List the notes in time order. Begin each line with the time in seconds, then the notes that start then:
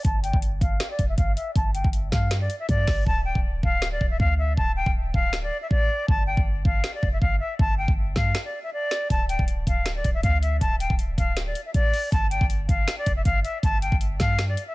0.05 G1 A5, kick, closed hi-hat
0.23 G5, closed hi-hat
0.33 G1, kick
0.42 closed hi-hat
0.61 G1 F5, kick, closed hi-hat
0.80 finger snap, snare, closed hi-hat
0.90 D5
0.99 F1, kick, closed hi-hat
1.09 E5
1.18 G1 F5, kick, closed hi-hat
1.36 E5, closed hi-hat
1.56 G1 A5, kick, closed hi-hat
1.74 G5, closed hi-hat
1.84 G1, kick
1.93 closed hi-hat
2.12 G2 F5, kick, snare, closed hi-hat
2.31 finger snap, snare, closed hi-hat
2.41 D5
2.50 closed hi-hat
2.59 E5
2.69 G2 D5, kick, closed hi-hat
2.87 G1, finger snap, kick, snare, open hi-hat
3.06 D1 A5, kick
3.25 G5
3.35 D1, kick
3.63 D1 F5, kick
3.82 finger snap, snare
3.92 D5
4.01 D1, kick
4.11 E5
4.20 D2 F5, kick
4.38 E5
4.57 D1 A5, kick
4.76 G5
4.86 D1, kick
5.14 D1 F5, kick
5.33 finger snap, snare
5.43 D5
5.62 E5
5.70 A1 D5, kick
6.08 G1 A5, kick
6.27 G5
6.37 G1, kick
6.65 G1 F5, kick
6.84 finger snap, snare
6.94 D5
7.03 F1, kick
7.13 E5
7.21 G1 F5, kick
7.40 E5
7.59 G1 A5, kick
7.78 G5
7.88 G1, kick
8.16 G2 F5, kick, snare
8.35 finger snap, snare
8.45 D5
8.63 E5
8.73 D5
8.91 finger snap, snare
9.10 D1 A5, kick, closed hi-hat
9.29 G5, closed hi-hat
9.39 D1, kick
9.48 closed hi-hat
9.67 D1 F5, kick, closed hi-hat
9.86 finger snap, snare, closed hi-hat
9.96 D5
10.04 D1, kick, closed hi-hat
10.14 E5
10.23 D2 F5, kick, closed hi-hat
10.42 E5, closed hi-hat
10.61 D1 A5, kick, closed hi-hat
10.80 G5, closed hi-hat
10.90 D1, kick
10.99 closed hi-hat
11.18 D1 F5, kick, closed hi-hat
11.37 finger snap, snare, closed hi-hat
11.46 D5
11.55 closed hi-hat
11.66 E5
11.74 A1 D5, kick, closed hi-hat
11.94 open hi-hat
12.12 G1 A5, kick, closed hi-hat
12.31 G5, closed hi-hat
12.41 G1, kick
12.50 closed hi-hat
12.69 G1 F5, kick, closed hi-hat
12.88 finger snap, snare, closed hi-hat
12.98 D5
13.06 F1, kick, closed hi-hat
13.16 E5
13.25 G1 F5, kick, closed hi-hat
13.44 E5, closed hi-hat
13.63 G1 A5, kick, closed hi-hat
13.82 G5, closed hi-hat
13.92 G1, kick
14.01 closed hi-hat
14.19 G2 F5, kick, snare, closed hi-hat
14.39 finger snap, snare, closed hi-hat
14.49 D5
14.57 closed hi-hat
14.67 E5